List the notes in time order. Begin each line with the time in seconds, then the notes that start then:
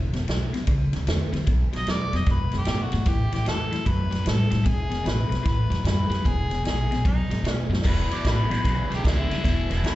Already playing: E2 B2
0.13 E1 E2 B2, snare, ride
0.27 B1 E2 B2, snare, ride
0.53 E2 B2, snare, ride
0.67 C#2 E2 C#3, kick, ride
0.93 C#2 E2 C#3, snare, ride
1.07 E2 D3, snare, ride
1.32 E2 D3, snare, ride
1.47 B1 B2 F#3, kick, ride
1.73 B1 B2 F#3 D#5, snare, ride
1.86 E2 B2 F#3 D5, snare, ride
2.13 E2 B2 F#3 D#5, snare, ride
2.26 F#2 B2 G#3, kick, snare, ride
2.31 B4
2.52 F#2 B2 G#3, snare, ride
2.58 G4
2.65 G#2 B2 A3, snare, ride
2.83 F#4
2.92 G#2 B2 A3, snare, ride
3.06 A1 A2 E3 G4, kick, snare, ride
3.32 A1 A2 E3 G4, snare, ride
3.45 E2 A2 E3 A4, snare, ride
3.71 A2 E3, snare, ride
3.85 F#2 A2 F#3 B4, kick, ride
4.10 F#2 A2 F#3, snare, ride
4.24 A2 G3 A4, snare, ride
4.50 A2 G3, snare, ride
4.64 E1 E2 B2 G#4, kick, ride
4.89 E1 E2 B2, snare, ride
5.04 A1 E2 B2 B4, snare, ride
5.29 B1 E2 B2, ride
5.34 snare
5.43 A1 A2 E3, kick, snare, ride
5.47 B4
5.70 E2 A2 F#3, snare, ride
5.84 F#2 A2 G3 B4, snare, ride
6.09 F#2 A2 G3, ride
6.13 snare
6.25 E1 E2 B2 G#4, kick, ride
6.49 E1 E2 B2, snare, ride
6.64 A#1 E2 B2 G#4, snare, ride
6.91 E2 B2, snare, ride
7.05 B1 B2 F#3 D#4, kick, ride
7.30 G#2 B2 G#3, snare, ride
7.43 B2 A3, snare, ride
7.53 C#4
7.69 F#2 B2 A3
7.73 snare
7.82 E1 E2 B2, kick, snare, crash
7.88 B4
8.10 E1 E2 B2, snare, ride
8.14 D5
8.24 A1 E2 B2, kick, snare, ride
8.28 B4
8.50 A1 E2 B2 B4, snare, ride
8.64 B1 E2 C#3, kick, snare, ride
8.90 B1 E2 C#3, snare, ride
8.95 G4
9.04 C#2 E2 D3, kick, snare, ride
9.08 E4
9.30 C#2 E2 D3, snare, ride
9.44 E1 E2 B2, kick, snare, ride
9.70 E1 E2 B2, snare, ride
9.83 B1 E2 B2, kick, snare, ride